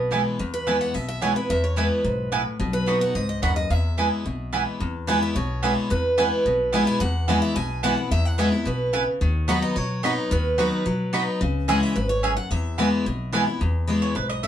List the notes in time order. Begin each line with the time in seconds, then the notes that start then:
Already playing: B1 B2 B4
0.11 E3 G#3 B3 E4 B4 G#5
0.39 E2
0.54 B4
0.67 E3 G#3 B3 E4 B4 G#5
0.81 F#5
0.94 B1 B2 E5
1.08 E5
1.21 E3 G#3 B3 E4 B4 C#5 G#5
1.36 B3 E4 B4
1.50 E2 E5
1.64 C#5
1.76 E3 G#3 B3 E4 B4 G#5
2.04 B1 G#2
2.32 A2 B3 E4 B4 G#5
2.60 B1 B2
2.73 B4
2.86 F#3 B3 D#4 F#4 D#5 B5
3.01 F#5
3.15 C#2 G#2 D#5
3.29 D#5
3.42 D#2 F#2 B3 F#4 D#5 F#5 B5
3.56 D#5
3.70 E2 E5
3.97 E3 G#3 B3 E4 B4 G#5
4.25 B1 B2
4.53 E3 G#3 B3 E4 B4 G#5
4.80 E2
5.07 E3 G#3 B3 E4 B4 F#5 G#5
5.23 E5
5.35 B1 B2 C#5
5.63 E3 G#3 B3 E4 B4 G#5
5.90 E2 B4
6.18 E3 G#3 B3 E4 B4 G#5
6.46 B1 B2
6.73 E3 G#3 B3 E4 B4 G#5
6.87 G#5
7.00 E2 F#5
7.28 E3 G#3 B3 E4 B4 G#5
7.42 E5
7.56 B1 B2 G#5
7.83 E3 G#3 B3 E4 B4 F#5 G#5
7.97 B3 E4
8.11 E2 E5
8.25 F#5
8.38 E3 G#3 B3 E4 B4 E5 G#5
8.52 B3 E4
8.65 B1 B2 B4
8.93 C#3 B3 E4 B4 G#5
9.21 D#2 D#3
9.48 F#3 B3 D#4 F#4 B4 D#5 F#5 B5
9.62 D#5
9.76 B2 F#3 C#5
10.03 F#3 B3 D#4 F#4 B4 D#5 B5
10.31 D#2 D#3 B4
10.58 F#3 B3 D#4 F#4 B4 D#5 B5
10.86 B2 F#3
11.13 F#3 B3 D#4 F#4 B4 D#5 B5
11.41 C#2 C#3
11.68 E3 G#3 C#4 E4 G#4 E5 F#5 G#5
11.83 E5
11.96 G#1 G#2 B4
12.09 C#5
12.23 F#2 C#4 G#4 E5 G#5
12.37 F#5
12.50 E2 E5
12.78 E3 G#3 B3 E4 B4 G#5
13.06 B1 B2
13.32 E3 G#3 B3 E4 B4 G#5
13.47 B3 E4
13.61 E2
13.87 E3 G#3 B3 E4
14.02 C#5
14.15 B1 G#2 B4
14.30 D#5
14.43 A2 E5